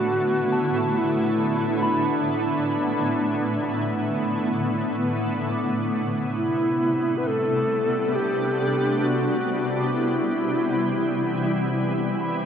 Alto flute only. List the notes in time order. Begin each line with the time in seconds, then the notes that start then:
Already playing: F#4
0.98 E4
1.86 D4
6.37 E4
7.18 B4
7.27 A4
8.15 G4
9.05 F#4
9.86 F#4
9.95 E4